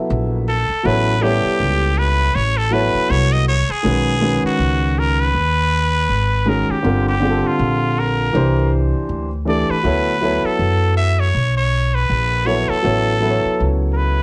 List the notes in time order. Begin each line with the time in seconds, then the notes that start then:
Already playing: F#3 B3 E4 A4 E5
0.10 A#1
0.48 A4
0.70 muted upright bass stroke
0.83 A1 F#3 B3 E4 A4 B4 C#5
1.21 G3 B3 E4 G4 A4 C#5
1.45 muted upright bass stroke
1.60 C#2
1.98 B4
2.35 A1 C#5
2.57 A4
2.71 F#3 B3 E4 A4 B4 C#5
2.94 muted upright bass stroke
3.10 C2 C#5
3.32 D#5
3.48 C#5
3.69 G#4, muted upright bass stroke
3.83 B1 D#3 G#3 C#4 F#4 B4
4.20 D#3 G#3 C#4 F#4 B4
4.44 F#4, muted upright bass stroke
4.59 C#2
4.99 A#4
5.20 B4
5.35 D#2
6.09 G#1
6.45 D#3 G#3 C#4 F#4 G#4 A#4
6.69 G4, muted upright bass stroke
6.83 G1 D3 G3 C4 F4 A#4
7.08 G4
7.20 D3 G3 C4 F4 G#4
7.30 A4
7.44 F4, muted upright bass stroke
7.59 A#1
8.00 A#4
8.33 C2 E3 A#3 D4 G4 C5
8.94 muted upright bass stroke
9.09 D2
9.45 E3 A3 D4 G4 A4 D5
9.69 B4, muted upright bass stroke
9.83 D2 F#3 B3 E4 A4 C#5
10.20 F#3 B3 E4 A4 C#5
10.44 A4, muted upright bass stroke
10.59 F#2
10.97 E5
11.20 C#5
11.35 B1
11.57 C#5
11.94 B4
12.10 A#1
12.45 F#3 B3 E4 A4 C#5
12.69 A4, muted upright bass stroke
12.82 A1 F#3 B3 E4 A4 C#5
13.20 F#3 B3 E4 A4 B4
13.30 C#5
13.45 muted upright bass stroke
13.60 C#2
13.93 A#4 B4